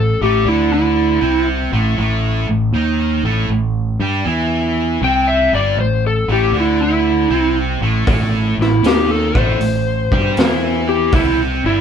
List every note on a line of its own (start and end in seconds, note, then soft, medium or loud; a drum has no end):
0.00 0.18 A1 medium
0.00 0.12 A2 medium
0.00 0.22 A4 medium
0.21 0.45 A1 medium
0.21 0.45 A2 medium
0.21 0.45 A3 medium
0.21 0.47 G4 medium
0.45 1.17 D2 medium
0.45 1.20 D3 medium
0.45 1.21 D4 loud
0.45 0.72 E4 medium
0.74 1.46 E4 medium
1.21 1.69 C2 medium
1.21 1.71 C3 medium
1.21 1.71 C4 medium
1.72 1.96 A1 medium
1.72 1.96 A2 medium
1.72 1.97 A3 medium
1.97 2.45 A1 medium
1.97 2.46 A2 medium
1.97 2.47 A3 medium
2.48 2.72 A1 medium
2.48 2.68 A2 medium
2.72 3.20 D#2 medium
2.72 3.23 D#3 medium
2.72 3.23 D#4 loud
3.23 3.47 A1 medium
3.23 3.48 A2 medium
3.23 3.48 A3 loud
3.49 3.96 A1 medium
3.49 3.91 A2 medium
4.00 4.23 G2 medium
4.00 4.24 G3 medium
4.00 4.24 G4 medium
4.25 4.97 E2 medium
4.25 5.00 E3 medium
4.25 5.00 E4 medium
5.02 5.49 C2 medium
5.02 5.51 C3 medium
5.02 5.51 C4 medium
5.02 5.27 G5 medium
5.27 5.51 E5 medium
5.52 5.76 G1 medium
5.52 5.76 G2 medium
5.52 5.77 G3 loud
5.52 5.78 D5 medium
5.77 6.25 A1 medium
5.77 6.18 A2 medium
5.77 6.03 C5 medium
6.07 6.29 A4 medium
6.28 6.51 A1 medium
6.28 6.53 A2 medium
6.28 6.53 A3 medium
6.32 6.55 G4 medium
6.52 7.25 D2 medium
6.52 7.29 D3 medium
6.52 7.29 D4 loud
6.60 6.81 E4 medium
6.83 7.55 E4 medium
7.30 7.78 C2 medium
7.30 7.80 C3 medium
7.30 7.80 C4 loud
7.81 8.04 A1 medium
7.81 8.06 A2 medium
7.81 8.06 A3 medium
8.07 8.55 A1 medium
8.07 8.56 A2 medium
8.07 8.57 A3 medium
8.07 kick loud
8.07 open hi-hat soft
8.58 8.81 A1 medium
8.58 8.79 A2 medium
8.58 snare soft
8.62 8.84 E4 medium
8.83 9.31 D#2 medium
8.83 9.33 D#3 medium
8.83 9.33 D#4 medium
8.83 9.09 G4 medium
8.83 snare loud
8.83 open hi-hat soft
9.11 9.38 A4 medium
9.35 9.58 A1 medium
9.35 9.59 A2 medium
9.35 9.59 A3 medium
9.35 10.85 C5 medium
9.35 kick medium
9.59 10.07 A1 medium
9.59 10.01 A2 medium
9.59 open hi-hat soft
10.11 10.34 G2 medium
10.11 10.36 G3 medium
10.11 10.36 G4 medium
10.11 kick medium
10.37 11.09 E2 medium
10.37 11.12 E3 medium
10.37 11.13 E4 medium
10.37 snare loud
10.37 open hi-hat soft
10.89 11.13 G4 medium
11.12 11.60 C2 medium
11.12 11.63 C3 medium
11.12 11.63 C4 medium
11.12 11.38 E4 medium
11.12 kick loud
11.12 open hi-hat soft
11.64 11.81 G1 medium
11.64 11.81 G2 medium
11.64 11.81 G3 medium
11.64 11.81 E4 medium